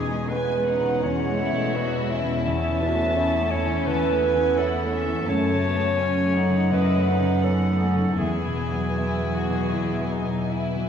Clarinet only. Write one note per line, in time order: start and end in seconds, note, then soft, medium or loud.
0.00 0.31 G#4 medium
0.30 1.02 B4 medium
1.03 2.16 C#5 medium
2.45 3.52 E5 medium
3.51 3.88 C#5 medium
3.87 4.59 B4 medium
4.58 5.28 A4 medium
5.29 6.69 C#5 medium
6.72 7.45 B4 medium
7.44 8.20 A4 medium
8.19 10.87 G#4 medium